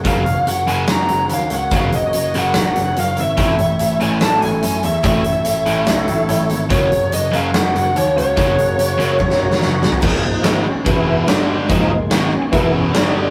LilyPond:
<<
  \new Staff \with { instrumentName = "Lead electric guitar" } { \time 4/4 \key ges \major \tempo 4 = 144 f''4 ges''8 aes''8 bes''4 f''8 ges''8 | f''8 ees''4 ges''8 ges''4 f''8 fes''8~ | fes''4. aes''8 a''8 aes''4 e''8 | e''2.~ e''8 r8 |
des''4 ees''8 f''8 ges''4 des''8 des''8~ | des''2. r4 | r1 | r1 | }
  \new Staff \with { instrumentName = "Steel-string acoustic guitar" } { \time 4/4 \key ges \major <ges des' ges' bes'>8 <des' ges' bes'>8 <ges des' ges' bes'>4 <ges des' ges' bes'>4 <ges des' ges' bes'>8 <des' ges' bes'>8 | <ges des' ges' bes'>8 <des' ges' bes'>8 <ges des' ges' bes'>8 <des' ges' bes'>8 <ges des' ges' bes'>4 <ges des' ges' bes'>8 <des' ges' bes'>8 | <a, e a cis' e' a'>8 <a cis' e' a'>8 <a cis' e' a'>8 <a cis' e' a'>8 <a, e a cis' e' a'>4 <a cis' e' a'>8 <a cis' e' a'>8 | <a, e a cis' e' a'>8 <a cis' e' a'>8 <a cis' e' a'>8 <a cis' e' a'>8 <a, e a cis' e' a'>4 <a cis' e' a'>8 <a cis' e' a'>8 |
<ges des' ges' bes'>8 <des' ges' bes'>8 <ges des' ges' bes'>8 <des' ges' bes'>8 <ges des' ges' bes'>4 <ges des' ges' bes'>8 <des' ges' bes'>8 | <ges des' ges' bes'>8 <des' ges' bes'>8 <ges des' ges' bes'>8 <des' ges' bes'>8 <ges des' ges' bes'>4 <ges des' ges' bes'>8 <ges' bes'>8 | <des f aes bes f' aes'>4 <aes bes f' aes'>8 <aes bes f' aes'>8 <e b e' b'>4 <g g' d''>8 <d' g' d''>8 | <des f aes bes f' aes'>4 <aes bes f' aes'>8 <aes bes f' aes'>8 <e b e' b'>4 <g d' g' d''>8 <d' g' d''>8 | }
  \new Staff \with { instrumentName = "Tonewheel organ" } { \time 4/4 \key ges \major <bes ges' des''>1~ | <bes ges' des''>1 | <a e' cis''>1~ | <a e' cis''>1 |
<bes ges' des''>1~ | <bes ges' des''>1 | r4 <ees' fes'>8 des'4 <bes b>8 aes4 | <g aes>4 r8 des'8 bes8 des'8 ees'4 | }
  \new Staff \with { instrumentName = "Tonewheel organ" } { \time 4/4 \key ges \major r1 | r1 | r1 | r1 |
r1 | r1 | <f bes ees'>4. r8 <e b e'>4 <d g d'>8 r8 | <f bes ees'>8 r4. <e b e'>8 r8 <g d'>4 | }
  \new Staff \with { instrumentName = "Distorted electric guitar" } { \clef bass \time 4/4 \key ges \major <ges, des ges>8 r4 <ges, des ges>8 r2 | <ges, des ges>8 r4 <ges, des ges>8 r2 | <a, e a>8 r4 <a, e a>8 r2 | <a, e a>8 r4 <a, e a>8 r2 |
<ges, des ges>8 r4 <ges, des ges>8 r2 | <ges, des ges>8 r4 <ges, des ges>8 r2 | <des, aes, des>8 <des, aes,>8 <aes, ees aes>8 r8 <e, b, e>4 <g, d g>4 | <des, aes, des>8 <des, aes,>8 <aes, ees aes>8 r8 <e, b, e>4 <g, d g>4 | }
  \new Staff \with { instrumentName = "Grand piano" } { \clef bass \time 4/4 \key ges \major ges,,8 ges,,8 ges,,8 ges,,8 ges,8 ges,,8 ees,8 des,8 | ges,,8 ges,,8 ges,,8 ges,,8 bes,,8 ges,,8 ges,,8 aes,,8 | a,,8 a,,8 a,,8 a,,8 a,8 a,,8 ges,8 e,8 | a,,8 a,,8 a,,8 a,,8 cis,8 a,,8 a,,8 aes,,8 |
ges,,8 ges,,8 ges,,8 ges,,8 ges,8 ges,,8 ees,8 des,8 | ges,,8 ges,,8 ges,,8 ges,,8 bes,,8 ges,,8 ges,,8 c,8 | des,,8 des,,8 aes,,8 des,,8 e,,4 g,,4 | des,,8 des,,8 aes,,8 des,,8 e,,4 g,,4 | }
  \new DrumStaff \with { instrumentName = "Drums" } \drummode { \time 4/4 <hh bd>8 hh8 hh8 hh8 <hh sn>8 hh8 hh8 hh8 | <hh bd>8 hh8 hh8 hh8 <hh sn>8 hh8 hh8 hh8 | <hh bd>8 hh8 hh8 hh8 <hh sn>8 hh8 hh8 hh8 | <hh bd>8 hh8 hh8 hh8 <hh sn>8 hh8 hh8 hh8 |
<hh bd>8 hh8 hh8 hh8 <hh sn>8 hh8 hh8 hh8 | <hh bd>8 hh8 hh8 <hh sn>8 bd16 sn8 sn16 sn8 sn16 tomfh16 | <cymc bd>4 <hh sn>4 <hh bd>4 <hh sn>4 | <hh bd>4 <hh sn>4 <hh bd>4 <hh sn>4 | }
>>